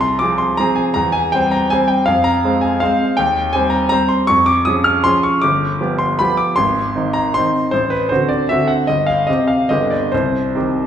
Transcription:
0.00 0.20 C2 medium
0.00 0.57 A#5 medium
0.00 0.20 C6 medium
0.19 0.55 F3 soft
0.19 0.55 C4 soft
0.19 0.55 G#4 soft
0.19 0.39 D6 medium
0.38 0.58 C6 medium
0.57 0.92 F3 soft
0.57 0.93 C4 soft
0.57 0.93 G#4 soft
0.57 0.77 A#5 medium
0.76 0.95 G#5 medium
0.94 1.32 E2 medium
0.94 1.13 A#5 medium
1.12 1.32 G#5 medium
1.32 1.67 G3 soft
1.32 1.68 C4 soft
1.32 1.68 C5 soft
1.32 1.51 G5 medium
1.51 1.70 A#5 medium
1.70 2.04 G3 soft
1.70 2.04 C4 soft
1.70 2.04 C5 soft
1.70 1.88 G#5 medium
1.88 2.06 G5 medium
2.06 2.42 F2 medium
2.06 2.24 F5 medium
2.24 2.62 A#5 medium
2.44 2.78 G#3 soft
2.44 2.78 C4 soft
2.44 2.78 C5 soft
2.61 2.81 G#5 medium
2.80 3.15 G#3 soft
2.80 3.15 C4 soft
2.80 3.15 C5 soft
2.80 3.17 F5 medium
3.17 3.53 D#2 medium
3.17 3.53 G5 medium
3.53 3.88 G3 soft
3.53 3.88 C4 soft
3.53 3.88 C5 soft
3.53 3.71 G#5 medium
3.70 3.88 A#5 medium
3.89 4.25 G3 soft
3.89 4.25 C4 soft
3.89 4.25 C5 soft
3.89 4.09 A#5 medium
4.09 4.28 C6 medium
4.27 4.65 F2 medium
4.27 4.46 C#6 medium
4.46 4.65 D6 medium
4.65 5.01 F3 soft
4.65 5.01 C#4 soft
4.65 5.02 G#4 soft
4.65 4.84 D#6 medium
4.84 5.04 F6 medium
5.04 5.38 F3 soft
5.04 5.39 C#4 soft
5.04 5.39 G#4 soft
5.04 5.23 C6 medium
5.23 5.41 C#6 medium
5.42 5.79 G1 medium
5.42 5.99 D6 medium
5.81 6.16 F3 soft
5.81 6.16 B3 soft
5.81 6.17 G4 soft
5.99 6.19 C6 medium
6.19 6.54 F3 soft
6.19 6.54 B3 soft
6.19 6.54 G4 soft
6.19 6.38 B5 medium
6.37 6.56 D6 medium
6.56 6.94 G#1 medium
6.56 7.14 C6 medium
6.95 7.31 D#3 soft
6.95 7.31 C4 soft
6.95 7.31 D#4 soft
7.13 7.34 A#5 medium
7.34 7.70 D#3 soft
7.34 7.70 C4 soft
7.34 7.71 D#4 soft
7.34 7.73 C6 medium
7.71 8.09 A1 soft
7.71 7.91 C5 medium
7.90 8.10 B4 medium
8.09 8.46 D3 soft
8.09 8.46 C4 soft
8.09 8.46 F#4 soft
8.09 8.29 C5 medium
8.29 8.49 D5 medium
8.49 8.85 D3 soft
8.49 8.86 C4 soft
8.49 8.86 F#4 soft
8.49 8.69 E5 medium
8.68 8.88 F#5 medium
8.87 9.27 G1 soft
8.87 9.07 D#5 medium
9.07 9.27 F5 medium
9.27 9.66 C3 soft
9.27 9.66 C4 soft
9.27 9.66 G4 soft
9.27 9.48 D#5 medium
9.48 9.69 F5 medium
9.69 10.11 G1 soft
9.69 10.09 D3 soft
9.69 10.09 B3 soft
9.69 10.09 G4 soft
9.69 9.91 D#5 medium
9.90 10.12 D5 soft
10.12 10.54 C2 soft
10.12 10.87 C5 medium
10.55 10.87 D#3 soft
10.55 10.87 C4 soft
10.55 10.87 G4 soft

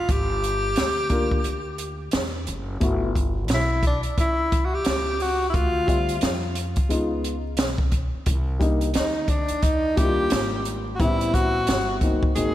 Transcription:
0.00 0.13 F4 medium
0.09 0.74 G1 loud
0.09 2.15 G4 loud
0.09 kick loud
0.09 closed hi-hat medium
0.44 closed hi-hat medium
0.76 1.42 D2 medium
0.76 snare medium
0.76 closed hi-hat medium
1.09 1.36 A#3 medium
1.09 1.37 D4 medium
1.09 1.37 F4 medium
1.09 1.37 A#4 medium
1.09 kick medium
1.09 closed hi-hat medium
1.31 kick medium
1.44 2.10 D2 medium
1.44 closed hi-hat medium
1.78 closed hi-hat medium
2.11 2.46 E2 loud
2.11 snare loud
2.11 closed hi-hat medium
2.47 2.80 F#1 medium
2.47 closed hi-hat medium
2.80 3.50 G1 loud
2.80 3.07 A3 medium
2.80 3.07 B3 medium
2.80 3.08 E4 medium
2.80 3.08 F#4 medium
2.80 kick loud
2.80 closed hi-hat medium
3.15 kick medium
3.15 closed hi-hat medium
3.48 4.02 B1 medium
3.48 snare medium
3.48 closed hi-hat medium
3.54 3.84 E4 medium
3.83 kick medium
3.83 closed hi-hat medium
3.87 4.01 D4 medium
4.03 muted upright bass stroke soft
4.03 closed hi-hat medium
4.18 4.83 C#2 medium
4.18 4.67 E4 medium
4.18 kick medium
4.18 closed hi-hat medium
4.52 kick medium
4.52 closed hi-hat medium
4.65 4.76 F#4 medium
4.74 5.23 G4 loud
4.85 5.51 C#2 medium
4.85 snare loud
4.85 closed hi-hat medium
5.20 5.49 F#4 medium
5.20 open hi-hat soft
5.50 5.56 E4 medium
5.54 6.19 D2 loud
5.54 6.23 F4 loud
5.54 kick loud
5.54 closed hi-hat medium
5.87 6.30 G3 medium
5.87 6.30 C4 medium
5.87 6.31 F4 medium
5.87 6.31 E5 medium
5.87 kick medium
5.87 closed hi-hat medium
6.09 closed hi-hat medium
6.21 6.74 F2 loud
6.21 snare loud
6.21 closed hi-hat medium
6.55 closed hi-hat medium
6.76 muted upright bass stroke soft
6.76 kick medium
6.76 closed hi-hat medium
6.89 7.59 C#2 medium
6.89 7.32 G#3 medium
6.89 7.33 B3 medium
6.89 7.33 D#4 medium
6.89 7.33 F4 medium
6.89 closed hi-hat medium
7.24 closed hi-hat medium
7.57 8.11 B1 medium
7.57 snare loud
7.57 closed hi-hat loud
7.78 kick medium
7.92 kick medium
7.92 closed hi-hat medium
8.14 muted upright bass stroke soft
8.26 8.92 C2 loud
8.26 kick loud
8.26 closed hi-hat medium
8.59 8.86 G3 medium
8.59 8.87 A#3 medium
8.59 8.87 D4 medium
8.59 8.87 D#4 medium
8.59 kick medium
8.59 closed hi-hat medium
8.81 closed hi-hat medium
8.94 9.47 D2 medium
8.94 9.31 D#4 medium
8.94 snare loud
8.94 closed hi-hat loud
9.28 9.65 D4 medium
9.28 kick medium
9.28 closed hi-hat medium
9.48 muted upright bass stroke soft
9.48 closed hi-hat medium
9.63 10.28 D#2 medium
9.63 9.99 D#4 medium
9.63 kick medium
9.63 closed hi-hat medium
9.96 10.93 G3 medium
9.96 10.94 A#3 medium
9.96 10.94 D4 medium
9.96 10.06 E4 medium
9.96 10.66 G4 loud
9.96 kick loud
9.96 closed hi-hat medium
10.05 10.98 F4 medium
10.30 10.96 G#1 medium
10.30 snare loud
10.30 closed hi-hat loud
10.65 closed hi-hat medium
10.95 11.96 G3 medium
10.95 11.02 F#4 medium
10.99 11.65 A1 loud
10.99 11.96 B3 medium
10.99 11.97 C4 medium
10.99 11.36 E4 loud
10.99 11.97 E4 medium
10.99 kick loud
10.99 closed hi-hat medium
11.21 closed hi-hat soft
11.34 12.02 F#4 loud
11.34 kick medium
11.34 closed hi-hat medium
11.67 12.20 G1 medium
11.67 snare loud
11.67 closed hi-hat medium
12.01 12.27 F#3 medium
12.01 12.28 A#3 medium
12.01 12.28 C4 medium
12.01 12.29 D#4 medium
12.01 kick medium
12.01 closed hi-hat medium
12.23 muted upright bass stroke soft
12.23 kick medium
12.35 12.54 G#1 loud
12.35 12.54 F#3 medium
12.35 12.54 A#3 medium
12.35 12.54 C4 medium
12.35 12.54 D#4 medium
12.35 12.54 G#4 loud
12.35 closed hi-hat medium

